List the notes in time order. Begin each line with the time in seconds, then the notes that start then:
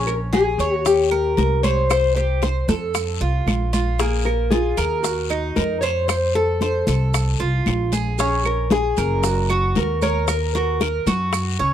Already playing: A#1 C#4
0.07 A#4, high bongo, high conga, claves, maracas
0.33 G#4, high bongo, high conga, short guiro, maracas
0.58 D#2 C#5, high bongo, high conga, short guiro, maracas
0.85 G4, high bongo, high conga, long guiro, maracas
1.11 A#4, high bongo, high conga, claves, maracas
1.37 C2 A#4, high bongo, low bongo, high conga, short guiro, maracas
1.63 C5 C#5, high conga, short guiro, maracas
1.89 C5, high bongo, high conga, long guiro, claves, maracas
2.16 G4 C5, high bongo, high conga, maracas
2.42 C5, high bongo, high conga, short guiro, maracas
2.68 F2 A4, high bongo, high conga, short guiro, maracas
2.94 high bongo, high conga, long guiro, claves, maracas
3.21 C2 F4, high bongo, high conga, maracas
3.46 A#1, high bongo, low bongo, high conga, short guiro, claves, maracas
3.73 F4, high conga, short guiro, maracas
3.99 A#3 G#4, high bongo, high conga, long guiro, maracas
4.25 A#4, high bongo, high conga, claves, maracas
4.51 F4 G#4, high bongo, high conga, short guiro, maracas
4.77 D#2 A#4, high bongo, high conga, short guiro, maracas
5.03 F#4, high bongo, high conga, long guiro, maracas
5.30 D#4, high bongo, high conga, claves, maracas
5.56 F2 A#4, high bongo, low bongo, high conga, short guiro, maracas
5.81 C5 C#5, short guiro, maracas
6.08 C5, high bongo, high conga, long guiro, claves, maracas
6.35 A4, high bongo, high conga, maracas
6.61 C5, high bongo, high conga, short guiro, maracas
6.87 C2 A4, high bongo, high conga, short guiro, maracas
7.13 high bongo, high conga, long guiro, claves, maracas
7.39 C2 F4, high bongo, high conga, maracas
7.66 A#1, high bongo, low bongo, high conga, short guiro, claves, maracas
7.92 G#4, high conga, short guiro, maracas
8.18 C#4 G#4, high bongo, high conga, long guiro, maracas
8.45 A#4, high bongo, high conga, claves, maracas
8.70 G#4, high bongo, high conga, short guiro, maracas
8.97 F#1 A#4, high bongo, high conga, short guiro, maracas
9.23 F#4, high bongo, high conga, long guiro, maracas
9.49 F#4, high bongo, high conga, claves, maracas
9.75 D#2 A#4, high bongo, low bongo, high conga, short guiro, maracas
10.02 A#4 C#5, high conga, short guiro, maracas
10.28 A#4, high bongo, high conga, long guiro, claves, maracas
10.55 F#4 A#4, high bongo, high conga, maracas
10.81 A#4, high bongo, high conga, short guiro, maracas
11.06 F#2 F#4, high bongo, high conga, short guiro, maracas
11.33 high bongo, high conga, long guiro, claves, maracas
11.59 C#2 C#4, high bongo, high conga, maracas